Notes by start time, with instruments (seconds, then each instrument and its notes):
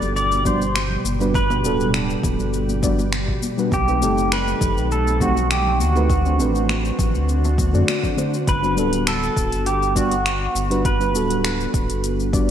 Already playing: ambient pad B2 G3, fm electric piano G3 B3 D4 F#4 A4, pedal steel guitar D5
0.01 analog synth bass G1, muted conga, shaker
0.16 pedal steel guitar D5, shaker
0.31 high conga, shaker
0.45 fm electric piano G3 B3 D4 F#4 D5, pedal steel guitar C5, kick, muted conga, high conga, low conga, shaker
0.62 shaker
0.76 finger snap, muted conga, shaker
0.90 low conga
1.05 analog synth bass G1, high conga, shaker
1.20 fm electric piano G3 B3 D4 F#4 B4, muted conga, shaker
1.34 pedal steel guitar B4, kick, shaker
1.49 fm electric piano G3 B3 D4 F#4 B4, muted conga, shaker
1.63 analog synth bass D1, fm electric piano G3 B3 D4 F#4 A4, shaker
1.80 shaker
1.94 finger snap, muted conga, shaker
2.10 shaker
2.23 analog synth bass D1, kick, muted conga, low conga, shaker
2.39 analog synth bass G1, shaker
2.54 shaker
2.69 muted conga, high conga, shaker
2.82 fm electric piano G3 B3 D4 F#4 D5, kick, high conga, low conga, shaker
2.99 muted conga, shaker
3.13 finger snap, shaker
3.28 kick, low conga
3.42 muted conga, high conga, shaker
3.57 fm electric piano G3 B3 D4 F#4 B4, shaker
3.71 analog synth bass B1, ambient pad D#3 A3 C4, pedal steel guitar G4, kick, muted conga, shaker
3.87 fm electric piano A3 C4 D#4 G4 B4, shaker
4.01 analog synth bass F#1, fm electric piano A3 C4 D#4 G4 A4, shaker
4.17 muted conga, shaker
4.32 pedal steel guitar B4, finger snap, shaker
4.47 muted conga, shaker
4.61 analog synth bass F#1, kick, low conga, shaker
4.77 analog synth bass B1, shaker
4.91 pedal steel guitar A4, muted conga, shaker
5.07 high conga, shaker
5.20 fm electric piano A3 C4 D#4 G4 C5, pedal steel guitar F#4, kick, muted conga, high conga, low conga, shaker
5.37 shaker
5.51 pedal steel guitar G4, finger snap, shaker
5.66 muted conga, low conga
5.80 analog synth bass D2, pedal steel guitar F#4, high conga, shaker
5.95 fm electric piano A3 C4 D#4 G4 B4, muted conga, shaker
6.09 ambient pad D3 F#4, kick, shaker
6.25 fm electric piano A3 C4 D4 F#4 C5, shaker
6.38 analog synth bass A1, fm electric piano A3 C4 D4 F#4 B4, muted conga, shaker
6.55 shaker
6.69 finger snap, muted conga, shaker
6.85 shaker
6.99 analog synth bass A1, kick, low conga, shaker
7.14 analog synth bass D2, muted conga, shaker
7.29 shaker
7.44 muted conga, high conga, shaker
7.58 kick, high conga, low conga, shaker
7.73 analog synth bass F#2, fm electric piano A3 C4 D4 F#4 D5, shaker
7.88 finger snap, muted conga, shaker
8.02 fm electric piano A3 C4 D4 F#4 D5, kick, low conga, shaker
8.16 fm electric piano A3 C4 D4 F#4 C5, muted conga, high conga, shaker
8.34 shaker
8.47 analog synth bass G1, ambient pad B3, pedal steel guitar B4, kick, closed hi-hat, shaker
8.62 fm electric piano G3 B3 D4 F#4 B4, shaker
8.76 analog synth bass D1, fm electric piano G3 B3 D4 F#4 A4, shaker
8.93 closed hi-hat, shaker
9.07 pedal steel guitar A4, finger snap, closed hi-hat, shaker
9.23 shaker
9.37 analog synth bass D1, kick, closed hi-hat, shaker
9.52 analog synth bass G1, closed hi-hat, shaker
9.66 pedal steel guitar G4, closed hi-hat, shaker
9.83 shaker
9.95 fm electric piano G3 B3 D4 F#4 D5, pedal steel guitar F#4, kick, closed hi-hat, shaker
10.12 closed hi-hat, shaker
10.26 finger snap, closed hi-hat, shaker
10.55 analog synth bass G1, shaker
10.70 fm electric piano G3 B3 D4 F#4 B4, closed hi-hat, shaker
10.85 pedal steel guitar B4, kick, closed hi-hat, shaker
11.00 fm electric piano G3 B3 D4 F#4 B4, shaker
11.13 analog synth bass D1, fm electric piano G3 B3 D4 F#4 A4, shaker
11.30 closed hi-hat, shaker
11.45 finger snap, closed hi-hat, shaker
11.61 shaker
11.74 analog synth bass D1, kick, closed hi-hat, shaker
11.90 analog synth bass G1, closed hi-hat, shaker
12.04 closed hi-hat, shaker
12.20 shaker
12.33 fm electric piano G3 B3 D4 F#4 D5, kick, closed hi-hat, shaker